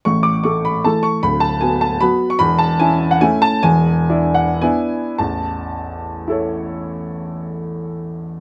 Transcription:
upright piano
0.05 A1 A2 C#6
0.23 D6
0.44 A3 A4 C#6
0.65 B5
0.84 E3 A3 A4 A5
1.03 C#6
1.23 D1 D2 B5
1.40 A5
1.61 B3 F#4 G#5
1.81 A5
2.00 F#3 B3 F#4 B5
2.30 C#6
2.39 E1 E2 B5
2.59 A5
2.80 C#4 E4 G#5
3.11 F#5
3.21 A3 C#4 E4 G#5
3.42 A5
3.63 E1 E2 G#5
4.10 D4 E4
4.35 F#5
4.61 B3 D4 E4 G#5
5.18 A1 E2 A5
6.28 E4 A4
6.32 C#5

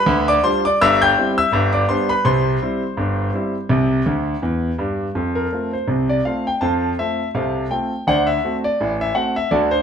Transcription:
grand piano
Already playing: B4 B5
0.06 D2 D3
0.28 D5 D6
0.43 G3 D4 F4 C5 C6
0.65 D5 D6
0.81 G1 G2 E5 E6
1.02 G5 G6
1.18 G3 C4 E4
1.38 E5 E6
1.52 G1 G2
1.73 D5 D6
1.89 G3 B3 D4 C5 C6
2.09 B4 B5
2.25 C2 C3 C5 C6
2.62 G3 C4 E4
2.97 G1 G2
3.33 G3 C4 E4
3.69 C2 C3
4.06 D2 D3
4.42 E2 E3
4.78 G2 G3
5.15 F2 F3
5.35 A#4
5.52 A3 C4 F4
5.73 C5
5.88 C2 C3
6.09 D5
6.25 A3 C4 F4 F5
6.47 G5
6.61 F2 F3 C5 F5 A5
6.99 A3 C4 F4 E5
7.35 C2 C3 A4 C5 F5
7.70 A3 C4 F4 G5
8.07 D2 D3 C5 D5 F#5
8.27 E5
8.45 A3 C4 F#4
8.64 D5
8.81 A1 A2
9.01 E5
9.15 A3 C4 F#4 F#5
9.36 E5
9.51 D2 D3 F#4 A4 D5
9.71 C5

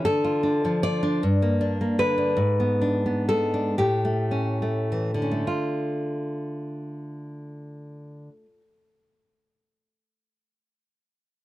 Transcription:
nylon-string guitar
0.05 D3 A4
0.24 F4
0.43 D4
0.65 F3
0.83 F4 D5
1.03 D4
1.23 G2
1.42 A#3
1.61 D4
1.81 A#3
1.99 D3 B4
2.18 D4
2.37 G#2
2.60 B3
2.81 D4
3.06 B3
3.29 G#3 A4
3.54 D4
3.78 A2 G4
4.05 A3
4.31 C#4
4.62 A3
4.92 E3
5.14 D3
5.22 C#4
5.32 A3
5.47 F4

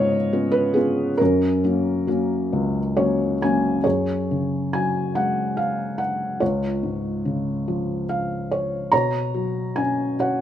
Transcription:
felt piano
Already playing: G#2 C#3 B3 C#4 F4 C#5 D#5 F5
0.33 B3 C#4 F4
0.52 B4
0.74 B3 C#4 F4 G#4
1.17 F#2 C#4 A#4
1.64 F#3 A#3 C#4
2.07 F#3 A#3 C#4
2.53 C#2
2.96 F#3 A#3 C#4 C#5
3.42 F#3 A#3 C#4 G#5
3.84 F#2 G#4 C#5
4.31 C#3
4.73 F#3 G#5
5.15 G#3 F#5
5.57 F5
5.98 F#5
6.40 C#2 F4 C#5
6.83 G#2
7.25 C#3
7.68 F3
8.09 F5
8.51 C#5
8.92 B2 C#5 A#5
9.34 F#3
9.76 C#4 G#5
10.19 F#4 C#5 F#5

